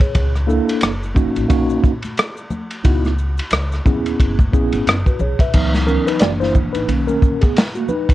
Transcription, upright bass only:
0.15 0.58 C#2 loud
0.83 1.25 F#1 medium
1.36 1.47 A1 loud
1.50 1.77 B1 medium
2.85 3.38 C#2 loud
3.52 3.78 C#2 medium
3.85 4.12 D#2 medium
4.19 4.46 F#1 loud
4.53 4.69 A#1 medium
4.72 4.84 G#1 medium
4.86 5.02 F#1 medium
5.20 5.36 B1 medium
5.39 5.51 C2 medium
5.54 5.96 C#2 medium
6.21 6.64 F#1 loud
6.75 6.86 A1 medium
6.88 7.15 B1 medium

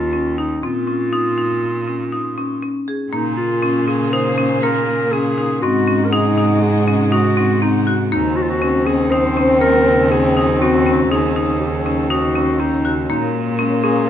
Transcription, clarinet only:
0.00 0.38 F4 medium
0.39 0.65 D#4 medium
0.63 2.63 F4 medium
3.12 3.36 D#4 medium
3.37 3.84 F4 medium
3.87 4.14 G#4 medium
4.13 4.64 C5 medium
4.63 5.13 A#4 loud
5.12 5.61 G#4 medium
5.61 6.06 F#4 medium
6.04 6.13 A#4 medium
6.12 6.61 G#4 medium
6.62 7.14 G#4 medium
7.12 7.61 F#4 medium
7.62 7.97 D#4 medium
8.12 8.38 D#4 medium
8.36 8.43 F#4 medium
8.42 8.52 F4 medium
8.50 8.87 F#4 medium
8.86 9.12 G#4 medium
9.11 9.60 C5 medium
9.60 10.12 A#4 medium
10.11 10.60 G#4 medium
10.61 11.07 F#4 medium
11.11 11.57 G#4 medium
11.60 12.11 G#4 medium
12.10 12.62 F#4 medium
12.60 12.97 D#4 medium
13.09 13.32 D#4 medium
13.83 14.10 G#4 medium

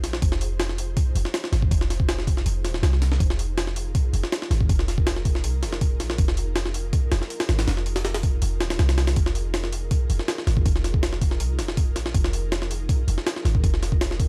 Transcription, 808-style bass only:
0.04 0.20 A#1 medium
0.22 0.95 F1 loud
1.15 1.24 F1 medium
1.52 1.69 G#1 loud
1.71 2.44 F1 loud
2.46 2.66 F1 medium
2.64 2.81 D#1 medium
2.83 3.19 C2 loud
3.20 3.93 F1 medium
4.13 4.22 F1 medium
4.51 4.67 G#1 loud
4.69 5.45 F1 medium
5.44 5.64 C2 loud
5.63 6.01 F1 medium
6.00 6.17 A#1 medium
6.19 6.92 F1 loud
7.12 7.20 F1 medium
7.49 7.66 G#1 loud
7.67 8.40 F1 medium
8.42 8.62 F1 medium
8.61 8.77 D#1 medium
8.79 9.15 C2 loud
9.17 9.90 F1 loud
10.10 10.18 F1 medium
10.47 10.64 G#1 loud
10.66 11.42 F1 loud
11.40 11.60 C2 loud
11.58 11.97 F1 medium
11.96 12.13 A#1 medium
12.15 12.88 F1 medium
13.07 13.16 F1 medium
13.45 13.62 G#1 loud
13.64 14.28 F1 medium

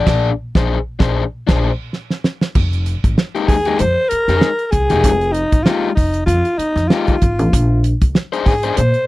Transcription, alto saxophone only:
3.48 3.81 G#4 loud
3.80 4.10 C5 loud
4.09 4.66 A#4 loud
4.66 4.73 A#4 medium
4.71 5.34 G#4 loud
5.32 5.65 D#4 medium
5.63 5.94 F4 loud
5.95 6.25 D#4 medium
6.26 6.60 F4 medium
6.58 6.89 D#4 medium
6.88 7.83 F4 medium
8.46 8.79 G#4 loud
8.77 9.06 C5 loud

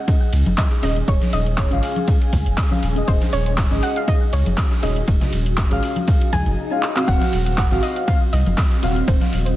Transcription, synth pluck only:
0.00 0.60 F#5 loud
0.58 0.82 D#5 medium
0.83 1.09 D#5 medium
1.08 1.19 C#5 medium
1.33 1.44 D#5 medium
1.58 2.79 C#5 medium
3.08 3.33 C5 loud
3.33 3.84 C#5 loud
3.83 3.95 F#5 loud
3.97 4.07 F5 loud
4.08 4.31 D#5 loud
4.33 4.84 C#5 loud
4.83 6.54 D#5 medium
6.33 6.56 G#5 loud
7.08 7.57 F#5 loud
7.58 7.84 F#5 loud
7.83 8.09 D#5 loud
8.08 8.33 F5 loud
8.33 9.10 D#5 loud
9.08 9.54 C5 medium

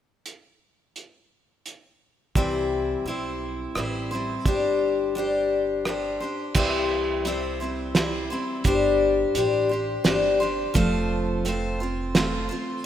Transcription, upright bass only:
2.36 2.93 C2 medium
3.05 3.65 B1 medium
3.75 4.35 A1 medium
4.45 6.18 G1 medium
6.55 8.28 C2 medium
8.65 9.23 G1 medium
9.35 9.95 A1 medium
10.04 10.64 G1 medium
10.75 12.48 F1 medium

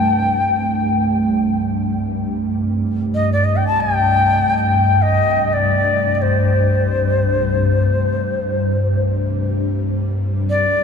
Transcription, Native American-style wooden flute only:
0.00 1.04 G5 medium
3.14 3.30 D#5 medium
3.32 3.46 D5 medium
3.44 3.58 D#5 medium
3.56 3.66 G5 medium
3.67 3.82 A5 medium
3.80 4.57 G5 medium
4.57 5.03 G5 medium
5.02 5.54 D#5 medium
5.53 6.15 D5 medium
6.15 6.23 D5 soft
6.22 9.02 C5 medium
10.50 10.84 D5 medium

